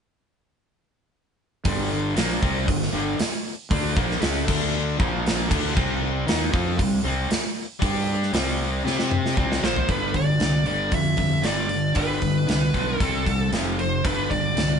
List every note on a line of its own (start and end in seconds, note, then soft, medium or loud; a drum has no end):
1.65 2.13 G1 medium
1.65 2.16 G2 medium
1.65 2.16 D3 loud
1.65 2.16 G3 loud
1.65 kick loud
1.65 open hi-hat medium
2.16 2.40 A#1 medium
2.16 2.41 A#2 medium
2.16 2.42 F3 medium
2.16 2.42 A#3 loud
2.16 snare loud
2.16 open hi-hat medium
2.42 2.66 C2 medium
2.42 2.66 C3 medium
2.42 2.67 G3 medium
2.42 2.67 C4 loud
2.42 kick medium
2.66 2.92 G1 medium
2.66 2.88 G2 medium
2.66 2.88 D3 medium
2.66 kick medium
2.66 open hi-hat medium
2.82 snare soft
2.93 3.17 G1 medium
2.93 3.18 G2 loud
2.93 3.18 D3 loud
2.93 3.19 G3 medium
3.19 muted fingered electric bass stroke soft
3.19 muted distorted electric guitar stroke medium
3.19 snare loud
3.19 open hi-hat medium
3.71 3.95 D2 medium
3.71 3.95 D3 medium
3.71 3.96 A3 loud
3.71 3.96 D4 loud
3.71 kick loud
3.71 open hi-hat medium
3.95 4.21 A#1 loud
3.95 4.20 A#2 medium
3.95 4.20 F3 medium
3.95 4.21 A#3 loud
3.95 kick loud
4.11 snare soft
4.20 4.46 C#2 medium
4.20 4.46 C#3 medium
4.20 4.47 G#3 medium
4.20 4.47 C#4 medium
4.20 snare loud
4.20 open hi-hat medium
4.46 4.96 D2 medium
4.46 4.98 D3 medium
4.46 4.98 A3 loud
4.46 4.98 D4 loud
4.46 kick medium
4.46 crash medium
4.98 5.47 A#1 medium
4.98 5.48 A#2 medium
4.98 5.49 F3 loud
4.98 5.50 A#3 loud
4.98 kick loud
5.26 snare loud
5.26 open hi-hat medium
5.48 5.75 D2 medium
5.48 5.74 D3 loud
5.48 5.75 A3 loud
5.48 5.75 D4 loud
5.48 kick loud
5.48 crash medium
5.75 6.24 C2 medium
5.75 6.26 C3 medium
5.75 6.26 G3 medium
5.75 6.27 C4 loud
5.75 kick loud
6.27 6.52 D#2 medium
6.27 6.52 D#3 medium
6.27 6.53 A#3 loud
6.27 6.53 D#4 medium
6.27 snare loud
6.27 open hi-hat medium
6.52 6.77 F2 medium
6.52 6.78 F3 loud
6.52 6.78 C4 loud
6.52 6.78 F4 loud
6.52 kick loud
6.79 7.03 C2 medium
6.79 7.00 C3 medium
6.79 7.00 G3 medium
6.79 kick medium
6.79 open hi-hat medium
7.04 7.29 C2 medium
7.04 7.28 C3 medium
7.04 7.30 G3 medium
7.04 7.30 C4 medium
7.30 muted distorted electric guitar stroke medium
7.30 muted fingered electric bass stroke soft
7.30 snare loud
7.30 open hi-hat medium
7.79 8.30 G2 medium
7.79 8.32 G3 medium
7.79 8.32 D4 medium
7.79 8.32 G4 loud
7.79 kick loud
7.79 open hi-hat medium
8.23 snare soft
8.33 8.81 C2 loud
8.33 8.84 C3 medium
8.33 8.84 G3 medium
8.33 8.83 C4 loud
8.33 snare loud
8.33 open hi-hat medium
8.84 9.33 C3 medium
8.84 9.36 C4 medium
8.84 9.36 G4 loud
8.84 9.36 C5 loud
8.84 snare medium
8.99 snare medium
9.11 mid tom medium
9.26 snare medium
9.37 9.61 C2 loud
9.37 9.62 C3 medium
9.37 9.62 G3 medium
9.37 9.62 C4 medium
9.37 kick medium
9.52 snare medium
9.62 9.86 A#1 medium
9.62 9.88 A#2 medium
9.62 9.88 F3 loud
9.62 9.88 A#3 loud
9.62 9.90 C5 medium
9.62 snare loud
9.76 floor tom medium
9.88 10.39 G1 medium
9.88 10.13 G2 medium
9.88 10.13 D3 medium
9.88 10.13 G3 medium
9.88 10.16 B4 medium
9.88 kick loud
9.88 open hi-hat medium
10.14 10.38 G2 medium
10.14 10.38 D3 medium
10.14 10.64 D5 medium
10.14 kick medium
10.14 open hi-hat soft
10.40 10.65 C2 medium
10.40 10.63 G2 medium
10.40 10.64 D3 medium
10.40 snare loud
10.40 open hi-hat medium
10.65 10.91 G1 medium
10.65 10.90 G2 medium
10.65 10.91 D3 medium
10.65 10.91 G3 medium
10.65 10.93 D5 medium
10.65 open hi-hat soft
10.92 11.43 F2 medium
10.92 11.15 G2 medium
10.92 11.16 D3 medium
10.92 11.47 E5 loud
10.92 kick loud
10.92 open hi-hat medium
11.17 11.41 G2 medium
11.17 11.41 D3 medium
11.17 kick medium
11.17 open hi-hat medium
11.42 11.94 G1 medium
11.42 11.68 G2 medium
11.42 11.68 D3 medium
11.42 11.68 G3 medium
11.42 11.93 D5 medium
11.42 snare loud
11.42 open hi-hat medium
11.69 11.93 G2 medium
11.69 11.93 D3 medium
11.69 open hi-hat soft
11.94 12.46 G1 medium
11.94 12.19 G2 medium
11.94 12.19 D3 medium
11.94 12.20 G3 medium
11.94 12.98 B4 medium
11.94 kick medium
11.94 open hi-hat medium
12.20 12.45 G2 medium
12.20 12.45 D3 medium
12.20 kick medium
12.20 open hi-hat soft
12.47 12.73 C2 medium
12.47 12.71 G2 medium
12.47 12.71 D3 medium
12.47 snare loud
12.47 open hi-hat medium
12.73 12.99 B1 medium
12.73 12.98 G2 medium
12.73 12.98 D3 medium
12.73 12.99 G3 medium
12.73 kick medium
12.73 open hi-hat soft
12.98 13.51 C2 medium
12.98 13.25 C3 medium
12.98 13.25 G3 medium
12.98 13.25 C4 medium
12.98 13.49 A4 medium
12.98 kick loud
12.98 open hi-hat medium
13.26 13.50 C3 medium
13.26 13.50 G3 medium
13.26 kick medium
13.26 open hi-hat medium
13.52 14.03 F1 medium
13.52 13.77 F2 medium
13.52 13.77 C3 medium
13.52 13.77 F3 medium
13.52 snare loud
13.52 open hi-hat medium
13.78 14.02 F2 medium
13.78 14.02 C3 medium
13.78 14.05 C5 loud
13.78 open hi-hat soft
14.03 14.55 G1 medium
14.03 14.28 G2 medium
14.03 14.29 D3 medium
14.03 14.29 G3 medium
14.03 14.30 B4 medium
14.03 kick loud
14.03 open hi-hat medium
14.29 14.53 G2 medium
14.29 14.54 D3 medium
14.29 14.79 D5 medium
14.29 kick medium
14.29 open hi-hat soft
14.55 14.79 C2 medium
14.55 14.79 G2 medium
14.55 14.79 D3 medium
14.55 snare loud
14.55 open hi-hat medium